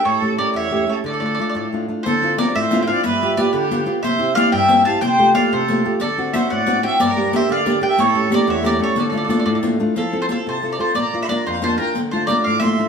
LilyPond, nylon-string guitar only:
\new Staff \with { instrumentName = "Nylon-string guitar" } { \time 6/8 \key d \minor \tempo 4. = 121 a,8 <a cis' g'>8 <a cis' g'>8 e,8 <a cis' g'>8 <a cis' g'>8 | d8 <a d' f'>8 <a d' f'>8 a,8 <a d' f'>8 <a d' f'>8 | d8 <c' d' f'>8 <c' d' f'>8 a,8 <c' d' f'>8 <c' d' f'>8 | g,8 <b f' g'>8 <b f' g'>8 d8 <b f' g'>8 <b f' g'>8 |
c8 <c' e' g'>8 <c' e' g'>8 g,8 <c' e' g'>8 <c' e' g'>8 | c8 <a f' g'>8 <a f' g'>8 c8 <a f' g'>8 <a f' g'>8 | d8 <c' d' fis'>8 <c' d' fis'>8 a,8 <c' d' fis'>8 <c' d' fis'>8 | g,8 <bes d' g'>8 <bes d' g'>8 d8 <bes d' g'>8 <bes d' g'>8 |
a,8 <a cis' g'>8 <a cis' g'>8 e,8 <a cis' g'>8 <a cis' g'>8 | d8 <a d' f'>8 <a d' f'>8 a,8 <a d' f'>8 <a d' f'>8 | \key f \major f8 <c' f' a'>8 <c' f' a'>8 c8 <c' f' a'>8 <c' f' a'>8 | bes,8 <bes d' f'>8 <bes d' f'>8 f,8 <bes d' f'>8 <bes d' f'>8 |
d8 <a d' f'>8 <a d' f'>8 a,8 <a d' f'>8 <a d' f'>8 | }